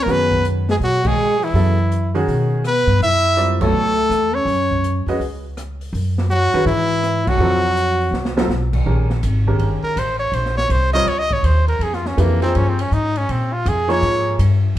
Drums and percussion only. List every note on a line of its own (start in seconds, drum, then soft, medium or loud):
0.08 snare soft
0.08 open hi-hat soft
0.32 kick medium
0.45 closed hi-hat medium
0.69 snare soft
0.69 open hi-hat soft
0.81 open hi-hat soft
1.05 kick medium
1.05 crash medium
1.42 open hi-hat soft
1.55 open hi-hat soft
1.92 closed hi-hat medium
2.15 open hi-hat soft
2.28 open hi-hat soft
2.64 cross-stick medium
2.64 closed hi-hat medium
3.02 open hi-hat soft
3.38 closed hi-hat medium
3.61 kick medium
3.61 crash medium
4.11 cross-stick medium
4.11 closed hi-hat medium
4.48 open hi-hat medium
4.71 kick soft
4.84 closed hi-hat medium
5.08 open hi-hat soft
5.21 open hi-hat soft
5.57 cross-stick medium
5.57 closed hi-hat medium
5.81 open hi-hat soft
5.95 open hi-hat medium
6.18 snare soft
6.31 closed hi-hat medium
6.67 open hi-hat soft
7.03 cross-stick medium
7.03 closed hi-hat medium
7.27 kick medium
7.27 crash medium
7.77 closed hi-hat medium
8.00 open hi-hat soft
8.14 snare soft
8.25 snare medium
8.38 snare medium
8.50 snare medium
8.73 kick medium
8.73 crash medium
9.10 snare soft
9.23 hi-hat pedal medium
9.23 ride medium
9.46 kick soft
9.59 ride medium
9.97 hi-hat pedal medium
9.97 ride medium
10.33 ride medium
10.46 snare soft
10.58 snare soft
10.70 hi-hat pedal soft
10.70 ride medium
11.08 ride medium
11.31 kick medium
11.44 hi-hat pedal soft
11.44 ride medium
11.68 ride soft
11.81 ride medium
11.93 snare soft
12.06 snare soft
12.18 hi-hat pedal medium
12.18 ride medium
12.42 ride soft
12.55 ride medium
12.79 ride medium
12.92 hi-hat pedal medium
13.15 ride soft
13.29 ride medium
13.66 hi-hat pedal medium
13.66 ride medium
13.90 snare soft
13.90 ride soft
14.03 ride medium
14.39 hi-hat pedal medium
14.39 ride medium